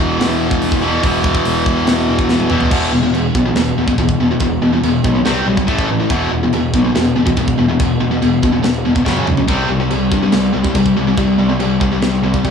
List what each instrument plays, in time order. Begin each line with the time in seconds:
Already playing: distorted electric guitar E2 B2 E3
0.00 picked electric bass E1
0.19 picked electric bass E1, snare, open hi-hat
0.51 kick
0.62 picked electric bass E1, open hi-hat
0.72 kick
0.82 distorted electric guitar E2 B2 E3
1.02 picked electric bass E1, distorted electric guitar E2 B2 E3, kick, open hi-hat
1.24 picked electric bass E1, kick
1.35 kick
1.45 picked electric bass E1, open hi-hat
1.66 picked electric bass E1, kick
1.87 picked electric bass E1, snare, open hi-hat
2.08 picked electric bass E1
2.19 kick
2.29 picked electric bass E1, snare
2.40 high tom
2.49 distorted electric guitar E2 B2 E3, mid tom
2.61 floor tom
2.71 picked electric bass E1, distorted electric guitar E2 B2 E3, kick, crash, china
2.93 picked electric bass E1, distorted electric guitar E2 B2
3.03 distorted electric guitar E2 B2
3.13 picked electric bass E1, distorted electric guitar E2 B2, china
3.35 picked electric bass B1, distorted electric guitar E2 B2, kick
3.45 distorted electric guitar E2 B2
3.55 picked electric bass E1, distorted electric guitar E2 B2, snare, china
3.77 picked electric bass E1, distorted electric guitar E2 B2
3.88 distorted electric guitar E2 B2, kick
3.98 picked electric bass E1, distorted electric guitar E2 B2, kick, china
4.09 kick
4.19 picked electric bass E1, distorted electric guitar E2 B2
4.31 distorted electric guitar E2 B2
4.40 picked electric bass E1, distorted electric guitar E2 B2, kick, china
4.61 picked electric bass E1, distorted electric guitar E2 B2
4.73 distorted electric guitar E2 B2
4.83 picked electric bass E1, distorted electric guitar E2 B2, china
5.04 picked electric bass B1, distorted electric guitar E2 B2, kick
5.16 distorted electric guitar E2 B2
5.25 picked electric bass C2, distorted electric guitar C3 G3 C4, snare, china
5.46 picked electric bass B1, distorted electric guitar C3 G3
5.57 distorted electric guitar C3 G3, kick
5.67 picked electric bass A1, distorted electric guitar A2 E3 A3, kick, china
5.78 kick
5.89 picked electric bass A1, distorted electric guitar A2 E3
6.00 distorted electric guitar A2 E3
6.10 picked electric bass E1, distorted electric guitar E2 B2 E3, kick, china
6.31 picked electric bass E1, distorted electric guitar E2 B2
6.43 distorted electric guitar E2 B2
6.53 picked electric bass E1, distorted electric guitar E2 B2, china
6.74 picked electric bass B1, distorted electric guitar E2 B2, kick
6.84 distorted electric guitar E2 B2
6.95 picked electric bass E1, distorted electric guitar E2 B2, snare, china
7.16 picked electric bass E1, distorted electric guitar E2 B2
7.26 distorted electric guitar E2 B2, kick
7.37 picked electric bass E1, distorted electric guitar E2 B2, kick, china
7.48 kick
7.59 picked electric bass E1, distorted electric guitar E2 B2
7.69 distorted electric guitar E2 B2
7.80 picked electric bass E1, distorted electric guitar E2 B2, kick, china
8.01 picked electric bass E1, distorted electric guitar E2 B2
8.11 distorted electric guitar E2 B2
8.22 picked electric bass E1, distorted electric guitar E2 B2, china
8.43 picked electric bass E1, distorted electric guitar E2 B2, kick
8.53 distorted electric guitar E2 B2
8.63 picked electric bass E1, distorted electric guitar E2 B2, snare, china
8.85 picked electric bass E1, distorted electric guitar E2 B2
8.95 distorted electric guitar E2 B2, kick
9.05 picked electric bass F#1, distorted electric guitar F#2 C#3 F#3, kick, snare
9.17 high tom
9.27 picked electric bass C#2, distorted electric guitar F#2 C#3, mid tom
9.37 distorted electric guitar F#2 C#3, floor tom
9.48 picked electric bass C2, distorted electric guitar C3 G3 C4, kick, china
9.69 picked electric bass C2, distorted electric guitar C3 G3
9.80 distorted electric guitar C3 G3
9.91 picked electric bass C2, distorted electric guitar C3 G3, china
10.12 picked electric bass G2, distorted electric guitar C3 G3, kick
10.23 distorted electric guitar C3 G3
10.32 picked electric bass C2, distorted electric guitar C3 G3, snare, china
10.54 picked electric bass C2, distorted electric guitar C3 G3
10.64 distorted electric guitar C3 G3, kick
10.75 picked electric bass C2, distorted electric guitar C3 G3, kick, china
10.86 kick
10.96 picked electric bass C2, distorted electric guitar C3 G3
11.07 distorted electric guitar C3 G3
11.17 picked electric bass C2, distorted electric guitar C3 G3, kick, china
11.39 picked electric bass C2, distorted electric guitar C3 G3
11.50 distorted electric guitar C3 G3
11.59 picked electric bass C2, distorted electric guitar C3 G3, china
11.81 picked electric bass C2, distorted electric guitar C3 G3, kick
11.93 distorted electric guitar C3 G3
12.02 picked electric bass C2, distorted electric guitar C3 G3, snare, china
12.22 picked electric bass C2, distorted electric guitar C3 G3
12.34 distorted electric guitar C3 G3, kick
12.44 picked electric bass C2, distorted electric guitar C3 G3, kick, china